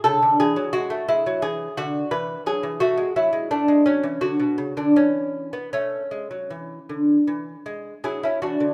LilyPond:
<<
  \new Staff \with { instrumentName = "Lute" } { \time 4/4 \key a \major \tempo 4 = 84 a'8 gis'8 fis'8 e'8 gis'8 fis'8 b'8 gis'8 | fis'8 e'8 d'8 cis'8 fis'8. d'16 cis'8. b16 | cis'2. <e' gis'>16 <cis' e'>16 <d' fis'>8 | }
  \new Staff \with { instrumentName = "Lute" } { \clef bass \time 4/4 \key a \major cis16 d16 e16 fis16 gis16 a16 gis16 fis16 e8 d8 e8 fis16 e16 | a16 gis16 fis16 gis16 a16 gis16 fis16 e16 d16 b,16 cis16 d16 e4 | a8 gis16 fis16 e8 d8 e8 gis8 fis8 e16 d16 | }
>>